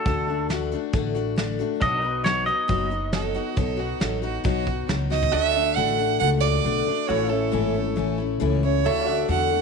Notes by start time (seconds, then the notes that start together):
Already playing: D4 F#4 A4
0.05 D2 D3 A3 D4 F#4, kick, closed hi-hat
0.27 A3 D4 F#4
0.49 D3 A3 D4 F#4, snare, closed hi-hat
0.71 A3 D4 F#4, closed hi-hat
0.93 A1 D3 A3 D4 F#4, kick, closed hi-hat
1.15 A3 D4 F#4, closed hi-hat
1.36 D3 A3 D4 F#4, snare, closed hi-hat
1.59 A3 D4 F#4, closed hi-hat
1.81 B1 B2 F#3 B3 D4 D#4 F#4 A4 D#5, kick, closed hi-hat
2.01 D#4 F#4
2.05 B3 B4
2.24 F#3 B3 D#4 F#4 C#5, snare, closed hi-hat
2.46 B3 D#4 F#4 D#5, closed hi-hat
2.68 F#1 B2 F#3 B3 D#4 F#4, kick, closed hi-hat
2.90 B3 D#4 F#4, closed hi-hat
3.12 F#3 B3 D#4 F#4 A4, snare, closed hi-hat
3.34 B3 D#4 F#4, closed hi-hat
3.56 B1 B2 F#3 B3 D#4 F#4 A4, kick, closed hi-hat
3.77 B3 D#4 F#4
4.00 A1 F#3 B3 D#4 F#4 A4, snare, closed hi-hat
4.22 B3 D#4 F#4, closed hi-hat
4.44 B1 B2 F#3 B3 D#4 F#4, kick, closed hi-hat
4.65 B3 D#4 F#4, kick, closed hi-hat
4.88 C#2 F#3 B3 D#4 F#4, snare, closed hi-hat
5.10 B3 D#4 F#4 D#5, snare
5.22 floor tom
5.32 D2 D3 A3 D4 F#4 A4 D5 D#5
5.43 E5
5.55 A3 D4 F#4
5.75 A1 D3 A3 D4 F#4 F#5
5.98 A3 D4 F#4
6.19 C#2 D3 A3 D4 F#5
6.24 F#4
6.40 D4 F#4 D5
6.45 A3
6.64 B1 D3 A3 D4 F#4
6.86 A3 D4 F#4, muted upright bass stroke
7.07 A1 A2 E3 A3 C#4 E4 F#4 A4 C#5
7.29 A3 C#4 E4 A4
7.34 E4
7.52 G#1 A2 E3 A3 C#4 E4
7.74 A3 C#4 E4
7.96 A1 E3 A3 C#4 E4
8.18 A3 C#4 E4
8.40 C#2 A2 E3 A3 C#4 E4
8.63 A3 C#4 E4 C#5
8.84 D2 D3 A3 D4 E4 F#4 A4 C#5 E5
9.06 A3 D4 F#4 D5
9.11 F#4
9.28 E2 D3 A3 D4 F#4 F#5
9.51 A3 D4 F#4